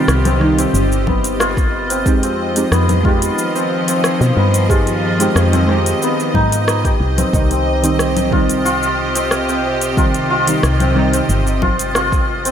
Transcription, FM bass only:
0.08 C2
0.74 G1
2.06 F2
2.72 F2
4.21 B2
4.37 G2
5.36 F2
6.35 G#2
7.00 C2
7.33 C2
10.63 C2
11.29 G1

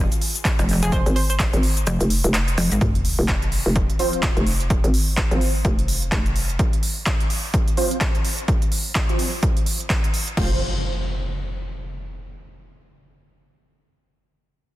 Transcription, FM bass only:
1.06 G#1
1.53 G#1
2.01 F1
2.24 F1
2.81 F1
3.19 F1
3.66 F1
4.37 F1
4.84 G#1
5.31 G#1
5.65 F1
6.12 F1
10.37 F1

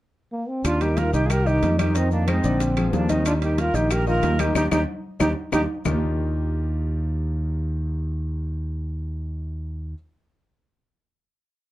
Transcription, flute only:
0.65 F4
0.82 G4
0.98 A#4
1.14 G4
1.26 G#4
1.30 A#4
1.47 G4
1.79 G4
1.95 D#4
2.12 D4
2.28 D#4
2.94 D4
3.10 D#4
3.26 F4
3.42 G4
3.58 A#4
3.75 G4
3.92 A#4
4.08 A#4
4.40 G4
4.56 G4
4.73 G4
5.21 G4
5.54 G4

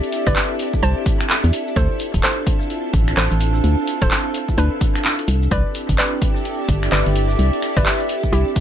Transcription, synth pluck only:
0.27 B4 D5
0.83 C5 A5
1.76 A4 C5
2.23 A4 C5
3.17 A4 C5
4.02 A4 C5
4.58 D4 B4
5.51 B4 D5
5.98 B4 D5
6.92 B4 D5
7.77 B4 D5
8.33 E4 G4

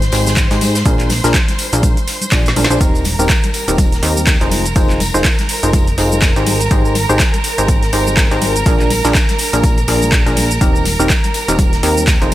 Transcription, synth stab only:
0.12 D#4 G4 G#4 C5
0.51 D#4 G4 G#4 C5
0.86 D4 F4 G#4 A#4
1.24 D4 F4 G#4 A#4
1.73 D4 F4 G#4 A#4
2.32 D4 F4 G#4 D5
2.56 D4 F4 G#4 A#4
2.70 D4 F4 G#4 C5
2.81 C4 D#4 G4 A#4
3.19 C4 D#4 G4 A#4
3.68 C4 D#4 G4 A#4
4.03 C4 D#4 G4 A#4
4.41 D#4 F4 G#4 C5
4.76 D#4 F4 G#4 C5
5.14 D#4 F4 G#4 C5
5.63 D#4 F4 G#4 C5
5.98 D#4 F4 G#4 C5
6.36 D#4 G4 G#4 C5
6.71 D#4 G4 G#4 C5
7.09 D#4 G4 G#4 C5
7.58 D#4 G4 G#4 C5
7.93 D#4 G4 G#4 C5
8.31 D#4 G4 G#4 C5
8.66 D4 F4 G#4 A#4
9.05 D4 F4 G#4 A#4
9.53 D4 F4 G#4 A#4
9.88 D4 F4 G#4 A#4
10.26 D4 F4 G#4 A#4
10.61 C4 D#4 G4 A#4
11.00 C4 D#4 G4 A#4
11.48 C4 D#4 G4 A#4
11.83 C4 D#4 G4 A#4
12.22 D#4 F4 G#4 C5

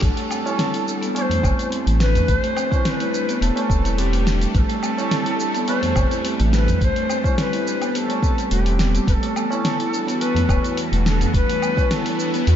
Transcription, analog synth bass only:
0.02 A1
1.44 G1
1.87 A1
2.29 A1
3.41 E1
3.70 E1
4.55 A1
5.96 G1
6.40 A1
6.81 A1
8.51 E1
9.07 E1
10.49 D1
10.92 E1
11.34 E1
12.47 E2

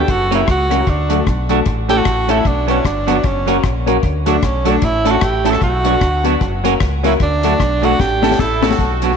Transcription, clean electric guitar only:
0.08 muted clean electric guitar stroke
0.30 F#3 A#3 C#4 F#4
0.70 F#3 A#3 C#4 F#4
1.09 F#3 A3 D4 F#4
1.49 F#3 A3 D4 F#4
1.89 A3 C#4 E4 A4
2.28 A3 C#4 E4 A4
2.67 F#3 B3 D4 F#4
3.07 F#3 B3 D4 F#4
3.23 muted clean electric guitar stroke
3.46 F#3 A#3 C#4 F#4
3.87 F#3 A#3 C#4 F#4
4.26 F#3 A3 D4 F#4
4.65 F#3 A3 D4 F#4
4.82 muted clean electric guitar stroke
5.05 A3 C#4 E4 A4
5.45 A3 C#4 E4 A4
5.85 F#3 B3 D4 F#4
6.24 F#3 B3 D4 F#4
6.41 muted clean electric guitar stroke
6.64 F#3 A#3 C#4 F#4
7.04 F#3 A#3 C#4 F#4
7.44 F#3 A3 D4 F#4
7.82 F#3 A3 D4 F#4
7.99 muted clean electric guitar stroke
8.22 A3 C#4 E4 A4
8.62 A3 C#4 E4 A4
9.02 F#3 B3 D4 F#4

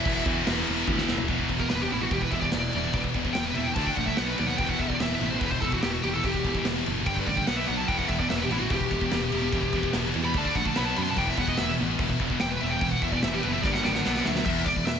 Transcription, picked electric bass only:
0.05 E1
0.26 E2
0.48 E1
0.68 E1
0.88 D2
1.10 E1
1.29 E1
1.50 E1
1.71 E1
1.92 A1
2.11 E1
2.32 E1
2.53 E1
2.75 E1
2.94 E1
3.15 E1
3.37 E1
3.58 E2
3.77 D2
3.97 A#1
4.20 B1
4.39 D#2
4.59 E1
4.79 E1
5.00 E1
5.21 A1
5.41 E1
5.62 E1
5.83 E1
6.05 E1
6.24 E1
6.44 E1
6.67 E1
6.88 F#1
7.06 G1
7.27 A1
7.49 B1
7.69 B1
7.89 E1
8.10 E1
8.31 E1
8.51 A1
8.71 E1
8.92 E1
9.13 E1
9.33 E1
9.53 E1
9.73 E1
9.95 E1
10.15 E2
10.34 D2
10.55 A#1
10.78 B1
10.98 F#2
11.17 E1
11.38 E1
11.59 E1
11.81 A1
11.99 E1
12.20 E1
12.42 E1
12.62 E1
12.81 E1
13.02 E1
13.24 E1
13.45 F#1
13.64 G1
13.86 A1
14.06 B1
14.27 D2
14.46 E1
14.66 E1
14.77 E1

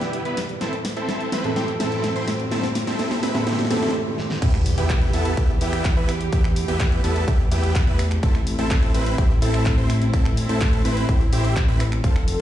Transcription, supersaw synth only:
Already playing: B3 E4 G4
0.25 B3 E4 B4
0.61 C4 E4 A4
0.97 C4 E4 A4
1.32 C4 E4 B4
1.56 C4 E4 G4
1.80 C4 E4 A4
2.16 C4 E4 C5
2.52 C4 E4 A4
2.87 C4 E4 A4
3.23 C4 E4 B4
3.47 C4 E4 G4
3.71 C4 E4 A4
4.42 B3 E4 G4
4.78 B3 E4 G4
5.13 B3 E4 A4
5.37 B3 E4 G4
5.61 B3 E4 G4
5.97 B3 E4 B4
6.33 B3 E4 G4
6.68 B3 E4 G4
7.04 B3 E4 A4
7.28 B3 E4 G4
7.52 B3 E4 G4
7.87 B3 E4 B4
8.23 C4 E4 A4
8.59 C4 E4 A4
8.94 C4 E4 B4
9.18 C4 E4 G4
9.42 C4 E4 A4
9.78 C4 E4 C5
10.13 C4 E4 A4
10.49 C4 E4 A4
10.85 C4 E4 B4
11.09 C4 E4 G4
11.33 C4 E4 G4
11.68 C4 E4 B4
12.04 C4 F4 A4

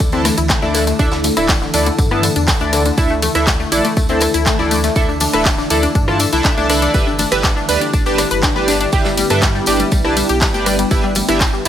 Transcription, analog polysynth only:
0.13 D4 E4 A4 A5
0.62 D4 E4 A4 D5
0.99 D4 E4 A4 E5
1.37 D4 E4 A4 E5
1.74 D4 E4 A4 D5
2.11 D4 E4 A4 A5
2.61 D4 E4 A4 D5
2.98 D4 E4 A4 E5
3.35 D4 E4 A4 E5
3.72 D4 E4 A4 D5
4.10 D4 E4 A4 A5
4.59 D4 E4 A4 D5
4.96 D4 E4 A4 E5
5.33 D4 E4 A4 E5
5.70 D4 E4 A4 D5
6.08 D4 E4 A4 A5
6.33 D4 E4 A4 E5
6.57 D4 E4 A4 A5
6.70 D4 E4 A4 D5
6.94 D4 G4 B4 E5
7.32 D4 G4 B4 E5
7.69 D4 G4 B4 D5
8.06 D4 G4 B4 A5
8.56 D4 G4 B4 D5
8.93 D4 G4 B4 E5
9.30 D4 G4 B4 E5
9.67 D4 G4 B4 D5
10.05 D4 G4 B4 A5
10.54 D4 G4 B4 D5
10.91 D4 G4 B4 E5
11.29 D4 G4 B4 E5

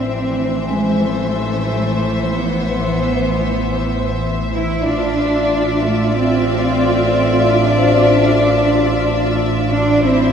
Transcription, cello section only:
Already playing: C4
0.69 G#3
1.01 A3
2.29 B3
4.56 E4
4.88 D4
5.84 A3
6.16 C4
7.45 D4
9.72 D4
10.04 C4

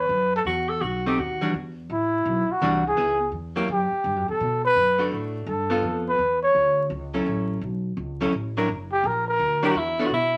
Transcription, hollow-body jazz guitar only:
1.06 A3 C4 D#4
1.41 E3 G3 D4 F#4
2.62 E3 G3 D4 F#4
2.97 B3 E4 G#4
3.56 F#3 A#3 E4 G4
4.98 A3 D4 F#4
5.70 B3 F4 A4
7.14 F#3 C#4 E4 A4
8.21 F#3 C#4 E4 A4
8.57 F#3 D4 E4 A#4
9.63 F#3 D4 E4 A#4
9.99 B3 D4 A4 C#5

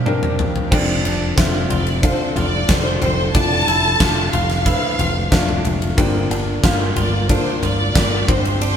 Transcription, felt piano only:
Already playing: C4 D4 G4 D5 F5
0.06 C4 D4 G4 A#4
0.71 C3 C4 D4 F4 A4 D5
1.36 C4 D4 F4 A4 E5
2.02 C4 D4 F4 A4 F5
2.68 C4 D4 F4 A4 D5
3.34 F3 A3 D4 E4 F4 D5
4.00 A3 D4 F4 G4 E5
4.65 F3 A3 D4 B4
4.73 C5
5.31 A3 D4 F4 F5
5.97 G2 D3 A#3 D4 F4 G4 D5
6.62 A#3 D4 F4 G4 F5
7.28 A#3 D4 F4 G4 A4
7.94 A#3 D4 F4 G4 D5
8.28 G2 G3 D4 G4 C5

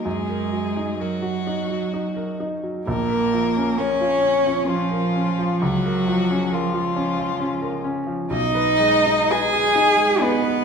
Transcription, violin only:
0.05 G#4
1.01 F#4
2.87 A#4
3.80 C#5
4.69 F4
5.62 F#4
6.54 F4
8.32 D#5
9.31 G#5
10.22 B4

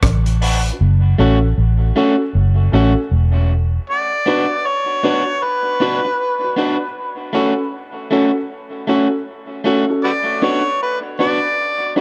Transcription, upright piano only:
0.41 D4 F#4 B4
0.66 F#4 B4
1.18 C#4 F#4 A4
1.96 C#4 F#4 A4
2.72 C#4 F#4 A4
4.27 D4 F#4 B4
5.04 D4 F#4 B4
5.81 D4 F#4 B4
6.44 F#4 B4
6.57 D4 F#4 B4
7.34 C#4 F#4 A4
8.11 C#4 F#4 A4
8.88 C#4 F#4 A4
9.65 C#4 F#4 A4
9.90 C#4 F#4 A4
10.42 D4 F#4 B4
11.19 D4 F#4 B4
11.96 D4 F#4 B4

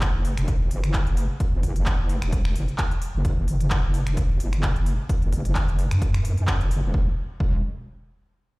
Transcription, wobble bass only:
Already playing: F#1
0.14 F#1
0.38 E1
0.71 F#1
0.84 F#1
1.07 F#1
1.53 F#1
1.99 F#1
2.22 E1
2.56 F#1
3.14 F#1
3.25 F#1
3.48 F#1
3.84 F#1
4.07 E1
4.40 F#1
4.53 F#1
4.76 F#1
5.22 F#1
5.68 F#1
5.91 F#2
6.25 F#2
6.61 F#1
6.84 E1
6.94 E1
7.40 E1

